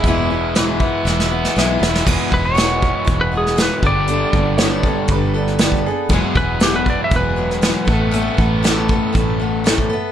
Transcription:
<<
  \new Staff \with { instrumentName = "Electric slide guitar" } { \time 4/4 \key e \mixolydian \tempo 4 = 119 r1 | r8 b'16 cis''4. b'16 gis'8 b'8 d''8~ | d''4. r2 r8 | r8 b'8 g'16 b'16 d''16 e''16 b'2 |
r1 | }
  \new Staff \with { instrumentName = "Upright piano" } { \time 4/4 \key e \mixolydian <e' gis'>4. r2 r8 | r1 | r4 cis''4 b'4. gis'8 | r1 |
r1 | }
  \new Staff \with { instrumentName = "Steel-string acoustic guitar" } { \time 4/4 \key e \mixolydian <e, b, e gis b e'>8 <e gis b e'>8 <e, b, e gis b e'>8 <e gis b e'>8 <e gis b e'>8 <e gis b e'>8 <e, b, e gis b e'>8 <e gis b e'>8 | <e, b, e gis b fis'>8 <e gis b fis'>8 <e, b, e gis b fis'>8 <e gis b fis'>8 <e gis b fis'>8 <e gis b fis'>8 <e, b, e gis b fis'>8 <b d' a'>8 | <g b d' a'>8 <b d' a'>8 <g b d' a'>8 <b d' a'>8 <g b d' a'>8 <b d' a'>8 <g b d' a'>8 <b d' a'>8 | <e, b, fis gis b gis'>8 <fis gis b gis'>8 <e, b, fis gis b gis'>8 <fis gis b gis'>8 <fis gis b gis'>8 <fis gis b gis'>8 <e, b, fis gis b gis'>8 <a b a'>8 |
<a, e a b a'>8 <a b a'>8 <a, e a b a'>8 <a b a'>8 <e a b a'>8 <a b a'>8 <a, e a b a'>8 <a b a'>8 | }
  \new Staff \with { instrumentName = "Overdriven electric guitar" } { \clef bass \time 4/4 \key e \mixolydian <e, gis b e'>8 b,8 e8 b8 e'8 b8 gis8 e'8 | <e, b, e gis b gis'>2.~ <e, b, e gis b gis'>8 <g, d g b d' g'>8~ | <g, d g b d' g'>2.~ <g, d g b d' g'>8 r8 | <e, b, e b e' gis'>2.~ <e, b, e b e' gis'>8 <a, e a b a'>8~ |
<a, e a b a'>2.~ <a, e a b a'>8 r8 | }
  \new Staff \with { instrumentName = "Fingered electric bass" } { \clef bass \time 4/4 \key e \mixolydian e,,2 e,,4 b,,8 e,,8 | e,,16 r16 e,,4. e,,4. g,,8~ | g,,8 g,,4. g,,2 | e,,16 r16 e,,4. e,,4. a,,8~ |
a,,8 a,,4. a,,2 | }
  \new DrumStaff \with { instrumentName = "Drums" } \drummode { \time 4/4 <hh bd>4 <hh sn>8 bd8 sn16 sn8 sn16 sn8 sn16 sn16 | <cymc bd>8 bd8 <hh sn>8 bd8 <hh bd>8. sn16 <hh sn>8 bd8 | hh8 bd8 <hh sn>8 bd8 <hh bd>8. sn16 <hh sn>16 bd8. | <hh bd>8 bd8 <hh sn>8 bd8 <hh bd>8. sn16 <hh sn>8 bd8 |
hh8 bd8 <hh sn>8 bd8 <hh bd>4 <hh sn>16 bd8. | }
>>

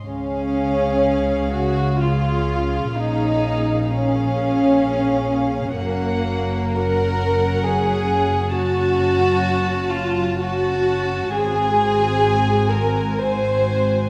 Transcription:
<<
  \new Staff \with { instrumentName = "Violin section" } { \time 3/4 \key des \major \tempo 4 = 64 f''2 f''4 | f''4 f''2 | ges''4 ges''2 | a''2 a''4 |
aes''2 aes''4 | }
  \new Staff \with { instrumentName = "Violin section" } { \time 3/4 \key des \major des'4. ges'8 f'4 | ees'4 des'2 | bes4 bes'4 aes'4 | ges'4. f'8 ges'4 |
aes'4. bes'8 c''4 | }
  \new Staff \with { instrumentName = "Viola section" } { \time 3/4 \key des \major <des' aes'>2 <des' aes'>4 | <des' aes'>4 <des' aes'>2 | <des' ges'>4 <des' ges'>2 | <des' ges'>2 <des' ges'>4 |
<c' ges'>2 <c' ges'>4 | }
  \new Staff \with { instrumentName = "Cello section" } { \clef bass \time 3/4 \key des \major des2. | bes,2. | ges,2.~ | ges,2. |
aes,2. | }
  \new Staff \with { instrumentName = "Double bass section" } { \clef bass \time 3/4 \key des \major des,2. | bes,,2. | ges,,2.~ | ges,,2. |
aes,,2. | }
>>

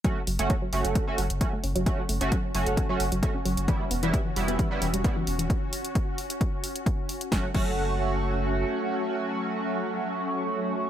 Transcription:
<<
  \new Staff \with { instrumentName = "Analog polysynth" } { \time 4/4 \key fis \phrygian \tempo 4 = 132 <a cis' fis'>16 r8 <a cis' fis'>16 r8 <a cis' fis'>8. <a cis' fis'>16 r8 <a cis' fis'>16 r8. | <a cis' fis'>16 r8 <a cis' fis'>16 r8 <a cis' fis'>8. <a cis' fis'>16 r8 <a cis' fis'>16 r8. | <g b e'>16 r8 <g b e'>16 r8 <g b e'>8. <g b e'>16 r8 <g b e'>16 r8. | r1 |
<a cis' fis'>16 r16 <a cis' fis'>2.~ <a cis' fis'>8~ | <a cis' fis'>1 | }
  \new Staff \with { instrumentName = "Synth drone" } { \time 4/4 \key fis \phrygian <cis' fis'>1~ | <cis' fis'>1~ | <cis' fis'>1~ | <cis' fis'>1 |
<fis cis'>1~ | <fis cis'>1 | }
  \new Staff \with { instrumentName = "Synth arpeggio sound" } { \clef bass \time 4/4 \key fis \phrygian fis16 r16 fis16 a16 cis'16 fis16 r16 fis16 a16 cis'16 fis16 r16 fis16 a16 cis'16 fis16 | r16 fis16 a16 cis'16 fis16 r16 fis16 a16 cis'16 fis16 r16 fis16 a16 cis'16 fis16 r16 | e16 g16 b16 e16 r16 e16 g16 b16 e16 r16 e16 g16 b16 e16 r16 e16 | r1 |
fis16 r16 fis16 r2. r16 | r1 | }
  \new Staff \with { instrumentName = "Sub bass" } { \clef bass \time 4/4 \key fis \phrygian r8 fis,,16 fis,,16 r8 fis,,16 fis,,16 r8 fis,,16 fis,,16 r8 fis,,16 fis,,16 | r8 fis,,16 fis,,16 r8 fis,,16 fis,,16 r8 fis,,16 fis,,16 r8 fis,,16 fis,,16 | r8 e,,16 e,,16 r8 e,,16 e,,16 r8 e,,16 e,,16 r8 e,,16 e,,16 | r1 |
fis,,16 r16 fis,,2~ fis,,8 r4 | r1 | }
  \new DrumStaff \with { instrumentName = "Drums" } \drummode { \time 4/4 <hh bd>8 hho16 hh16 <hh bd>8 hho16 hh16 <hh bd>8 hho16 hh16 <hh bd>8 hho16 hh16 | <hh bd>8 hho16 hh16 <hh bd>8 hho16 hh16 <hh bd>8 hho16 hh16 <hh bd>8 hho16 hh16 | <hh bd>8 hho16 hh16 <hh bd>8 hho16 hh16 <hh bd>8 hho16 hh16 <hh bd>8 hho16 hh16 | <hh bd>8 hho16 hh16 <hh bd>8 hho16 hh16 <hh bd>8 hho16 hh16 <hh bd>8 hho16 hh16 |
<bd sn>8 <cymc bd>8 r4 r4 r4 | r4 r4 r4 r4 | }
>>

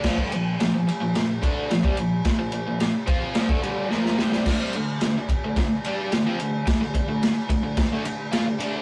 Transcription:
<<
  \new Staff \with { instrumentName = "Overdriven electric guitar" } { \clef bass \time 4/4 \key d \minor \tempo 4 = 109 <bes, f>16 <g, d>16 <bes, f>8 <bes, f>16 <bes, f>16 r16 <bes, f>16 <bes, f>8 <d a d'>8 <bes, f>16 <c g>16 <bes, f>8 | r16 <bes, f>16 <bes, f>16 <bes, f>8 r16 <f c' f'>8 <bes, f>16 <d a>16 <g, d g>8 <bes, f bes>8 <c g>16 <c g>16 | <d a>16 <c g>16 <d a>8 <d a>16 <d a>16 r16 <d a>16 <d a>8 <g d' g'>8 <d a>16 <f c'>16 <d a>8 | r16 <d a>16 <d a>16 <d a>8 r16 <d a>16 <d a>16 <d a>16 <d a>16 <d a>8 <bes f'>16 <d a>16 <d a d'>8 | }
  \new DrumStaff \with { instrumentName = "Drums" } \drummode { \time 4/4 <cymc bd sn>16 bd16 cymr8 <cymr sn>8 cymr8 <cymr sn>8 <bd cymr>8 <cymr sn>16 bd16 cymr8 | <bd cymr sn>8 cymr8 <cymr sn>8 <bd cymr>8 <cymr sn>16 bd16 cymr8 sn16 sn16 sn16 sn16 | <cymc bd sn>8 cymr8 <cymr sn>8 <bd cymr>8 <bd cymr sn>8 cymr8 <cymr sn>8 cymr8 | <bd cymr sn>8 <bd cymr>8 <cymr sn>8 <bd cymr>8 <bd cymr sn>8 cymr8 <cymr sn>8 cymr8 | }
>>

